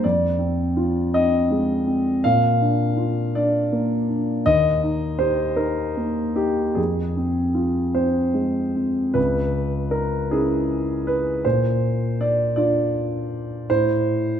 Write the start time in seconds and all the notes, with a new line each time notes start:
0.04 F2 D5
0.39 C4
0.77 F4
1.14 C4 D#5
1.51 G#3
1.87 C4
2.24 A#2 F5
2.61 D4
2.97 F4
3.35 D4 D5
3.72 A#3
4.08 D4
4.46 D#2 D#5
4.83 D#4
5.19 G4 C5
5.56 D#4 A#4
5.97 A#3
6.36 D#4 G4
6.75 F2 G#4
7.17 C4
7.55 F4
7.95 C4 C5
8.34 G#3
8.76 C4
9.14 C#2 B4
9.91 A#4
10.31 C#4 E4 G#4
11.07 B4
11.45 A#2 C5
12.21 D5
12.56 D4 F4 D5
13.70 A2 C5